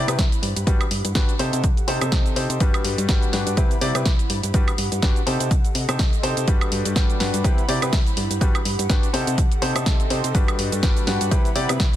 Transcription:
Already playing: E4 C5 B5
0.08 C3 C4 E4 G4 B4, closed hi-hat, high woodblock, shaker
0.19 C2, kick, snare, closed hi-hat, shaker
0.32 closed hi-hat, shaker
0.43 G2 G4, open hi-hat
0.56 G2, closed hi-hat, shaker
0.67 G1 G3 D4 F#4 G4 B4, kick, closed hi-hat, shaker
0.81 closed hi-hat, high woodblock, shaker
0.87 G2 F#5, open hi-hat
1.05 G2, closed hi-hat, shaker
1.15 G1 D4 F#4 G4 B4, kick, snare, closed hi-hat, shaker
1.29 closed hi-hat, shaker
1.39 C3 D#4 G4 A4 C5, open hi-hat
1.53 C3, closed hi-hat, shaker
1.64 C2, kick, closed hi-hat, shaker
1.77 closed hi-hat, shaker
1.88 C3 D#4 G4 A4 C5, open hi-hat
1.95 D#5 C6
2.01 C3 D#4 G4 A4 C5, closed hi-hat, high woodblock, shaker
2.12 C2, kick, snare, closed hi-hat, shaker
2.26 closed hi-hat, shaker
2.36 C3 D#4 G4 A4 C5, open hi-hat
2.50 C3, closed hi-hat, shaker
2.60 G1 G3 D4 F#4 G4 B4, kick, closed hi-hat, shaker
2.74 F#5, closed hi-hat, high woodblock, shaker
2.84 G2, open hi-hat
2.98 G2, closed hi-hat, shaker
3.05 B5
3.09 G1 G3 D4 F#4 G4 B4, kick, snare, closed hi-hat, shaker
3.22 closed hi-hat, shaker
3.33 G2 D4 F#4 G4 B4, snare, open hi-hat
3.47 G2, closed hi-hat, shaker
3.57 C2 C3 C4 E4 G4 B4, kick, closed hi-hat, shaker
3.71 closed hi-hat, shaker
3.81 C3 C4 E4 G4 D5, open hi-hat
3.91 C5
3.95 C3 C4 E4 G4 B4, closed hi-hat, high woodblock, shaker
4.05 C2, kick, snare, closed hi-hat, shaker
4.19 closed hi-hat, shaker
4.30 G2 G4, open hi-hat
4.43 G2, closed hi-hat, shaker
4.51 G1 G3 D4 F#4 G4 B4 F#5, kick, closed hi-hat, shaker
4.68 closed hi-hat, high woodblock, shaker
4.78 G2, open hi-hat
4.92 G2, closed hi-hat, shaker
5.02 G1 D4 F#4 G4 B4, kick, snare, closed hi-hat, shaker
5.16 closed hi-hat, shaker
5.26 C3 D#4 G4 A4 C5, open hi-hat
5.40 C3, closed hi-hat, shaker
5.49 C2 D#5, kick, closed hi-hat, shaker
5.65 closed hi-hat, shaker
5.75 C3, open hi-hat
5.82 C6
5.89 C3 D#4 G4 A4 C5, closed hi-hat, high woodblock, shaker
5.99 C2, kick, snare, closed hi-hat, shaker
6.13 closed hi-hat, shaker
6.23 C3 D#4 G4 A4 C5, open hi-hat
6.37 C3, closed hi-hat, shaker
6.47 G1 G3 D4 F#4 G4 B4, kick, closed hi-hat, shaker
6.61 closed hi-hat, high woodblock, shaker
6.72 G2, open hi-hat
6.85 G2, closed hi-hat, shaker
6.92 G3 D4 F#4 G4 B4 F#5 B5, snare, closed hi-hat
6.96 G1, kick, shaker
7.10 closed hi-hat, shaker
7.20 G2 D4 F#4 G4 B4, snare, open hi-hat
7.34 G2, closed hi-hat, shaker
7.44 C2 C3 C4 E4 G4 B4, kick, closed hi-hat, shaker
7.58 closed hi-hat, shaker
7.68 C3 C4 E4 G4 D5, open hi-hat
7.78 C3 C4 E4 G4 B4 C5, closed hi-hat, high woodblock
7.82 shaker
7.93 C2, kick, snare, closed hi-hat, shaker
8.06 closed hi-hat, shaker
8.17 G2 G4, open hi-hat
8.30 G2, closed hi-hat, shaker
8.41 G1 G3 D4 F#4 G4 B4, kick, closed hi-hat, shaker
8.55 closed hi-hat, high woodblock, shaker
8.61 G2 F#5
8.65 open hi-hat
8.79 G2, closed hi-hat, shaker
8.89 G1 D4 F#4 G4 B4, kick, snare, closed hi-hat, shaker
9.03 closed hi-hat, shaker
9.13 C3 D#4 G4 A4 C5, open hi-hat
9.27 C3, closed hi-hat, shaker
9.38 C2, kick, closed hi-hat, shaker
9.52 closed hi-hat, shaker
9.62 C3 D#4 G4 A4 C5 D#5, open hi-hat
9.69 C6
9.76 C3 D#4 G4 A4 C5, closed hi-hat, high woodblock, shaker
9.86 C2, kick, snare, closed hi-hat, shaker
10.00 closed hi-hat, shaker
10.10 C3 D#4 G4 A4 C5, open hi-hat
10.24 C3, closed hi-hat, shaker
10.35 G1 G3 D4 F#4 G4 B4, kick, closed hi-hat, shaker
10.48 closed hi-hat, high woodblock, shaker
10.59 G2, open hi-hat
10.72 G2, closed hi-hat, shaker
10.79 F#5 B5
10.83 G1 G3 D4 F#4 G4 B4, kick, snare, closed hi-hat, shaker
10.97 closed hi-hat, shaker
11.07 G2 D4 F#4 G4 B4, snare, open hi-hat
11.21 G2, closed hi-hat, shaker
11.31 C2 C3 C4 E4 G4 B4, kick, closed hi-hat, shaker
11.45 closed hi-hat, shaker
11.55 C3 C4 E4 G4 D5, open hi-hat
11.65 C3 C4 E4 G4 B4 C5, closed hi-hat, high woodblock
11.70 shaker
11.80 C2, kick, snare, closed hi-hat, shaker

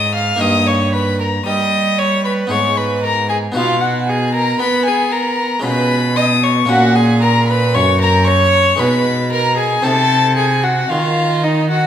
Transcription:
Already playing: G#2 G#3 D#4 B4 D#5 D#6
0.14 F5 F6
0.36 A#3 D#4 A#4 D#5
0.40 G2 D#6
0.66 C#5 C#6
0.93 B4 B5
1.20 A#4 A#5
1.46 G3 D#5 D#6
1.98 C#5 C#6
2.25 B4 B5
2.47 B3 D#4 G#4 C#5 C#6
2.51 G#2
2.77 B4 B5
3.04 A#4 A#5
3.29 G#4 G#5
3.52 B3 D#4 F#4 F5
3.56 B2 F4
3.81 F#4 F#5
4.06 G#4 G#5
4.32 A#4 A#5
4.59 B3 B4 B5
4.86 G#4 G#5
5.12 A#4 A#5
5.60 G#3 C#4 F4
5.64 B2 B4 B5
6.16 D#5 D#6
6.43 C#5 C#6
6.65 A#2 A#3 C#4 F#4 F#5
6.70 A#2
6.95 G#4 G#5
7.22 A#4 A#5
7.48 B4 B5
7.74 F#2 C#5 C#6
8.01 A#4 A#5
8.27 C#5 C#6
8.76 B2 G#3 D#4 B4 B5
8.80 B2
9.32 A#4 A#5
9.57 G#4 G#5
9.82 C3 C4 D#4 A4 A5
10.37 G#4 G#5
10.63 F#4 F#5
10.89 D#3 F4 F5
11.43 D#4 D#5
11.70 F#4 F#5

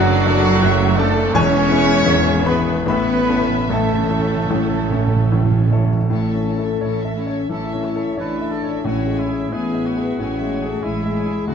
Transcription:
Already playing: F#1 F#2 F#3 A3 D4 F#4 D5 F#5
0.26 A3 D4 A4
0.63 F#1 F#2 C#4 E5
0.96 A3 D4 A4 D5 A5
1.33 E1 E2 G#3 B3 C#4 C#5 E5 G#5 C#6
1.70 B3 E4 G#4
2.06 E1 G#1 E2
2.45 B3 E4 G#4 B4 B5
2.86 A1 A2 A3 B3 C#4 B4 E5 B5
2.96 A2
3.05 A2
3.14 A2
3.24 A2
3.28 A2 C#4 E4 A4
3.40 A2
3.49 A2
3.59 A2
3.67 A1 A2 A3 C#4 A4
3.72 A2 A4 E5 A5
3.84 A2
3.94 A2
4.02 A2
4.09 A2 C#4 E4 A4
4.19 A2
4.28 A2
4.36 A2
4.45 A2
4.50 A1 A2
4.63 A2
4.72 A2
4.82 A2
4.90 A2 C#4 E4 A4
4.98 A2
5.07 A2
5.16 A2
5.24 A2
5.32 A1 A2
5.43 A2
5.51 A2
5.60 A2
5.68 A2 C#4
5.72 A2 E4 A4
5.84 A2
5.93 A2
6.00 A2
6.10 A1 A2 A3 E4 A4 C#5 A5
6.29 A4 E5
6.34 C#4
6.47 E4 C#5 A5
6.58 A4
6.64 A4 E5
6.81 A1 A2 E4 C#5 A5
6.98 A4 E5
7.05 E5
7.16 C#4 E4 C#5 A5
7.27 C#5
7.32 A4 E5
7.49 A1 A2 E3 E4 A4 C#5 E5 A5
7.67 A4 E5
7.73 C#4
7.84 E4 C#5 A5
7.96 A4
8.01 A4 E5
8.17 A1 A2 D4 E4 B4 C#5 D5 A5
8.34 A4 E5
8.41 E5
8.51 E4 A4 C#5 A5
8.64 C#5
8.68 A4 E5
8.84 A1 A2 C#4 E4 F#4 C#5 G#5
9.01 G#4 E5
9.07 G#3
9.16 E4 C#5 G#5
9.20 E4
9.29 G#4
9.34 E5
9.38 G#4
9.52 A1 A2 B3 E4 G#4 B4 C#5 G#5
9.69 G#4 E5
9.74 E5
9.85 E4 F#4 C#5 G#5
9.97 G#4
10.01 G#4 E5
10.18 A1 A2 C#4 E4 C#5 G#5
10.35 G#4 E5
10.41 G#3
10.51 E4 C#5 G#5
10.62 G#4
10.67 A3 G#4 A4 E5
10.83 A1 A2 G#3 E4 G#4 C#5 G#5
10.99 G#4 E5
11.05 E5
11.14 E4 C#5 G#5
11.26 G#4
11.31 G#4 E5
11.46 D2 A3 F#4 A4 D5 A5

